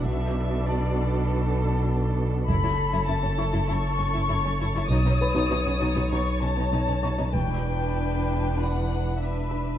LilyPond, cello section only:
\new Staff \with { instrumentName = "Cello section" } { \clef bass \time 4/4 \key b \minor \tempo 4 = 98 b,1 | fis,16 fis,16 r16 fis,16 fis,16 fis,16 fis,16 fis,16 fis,16 r16 fis,16 fis,16 fis,16 fis,16 fis,16 fis,16 | b,16 b,16 r16 b,16 b,16 b,16 b,16 b,16 b,16 r16 b,16 b,16 b,16 b,16 b,16 b,16 | e,1 | }